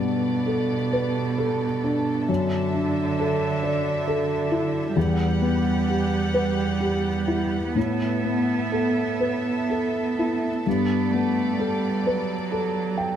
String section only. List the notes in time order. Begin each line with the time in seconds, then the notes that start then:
Already playing: B3 A4 D5
2.30 D4 E5
4.96 B3 G4 F#5
7.76 A4 E5
10.66 B3 D5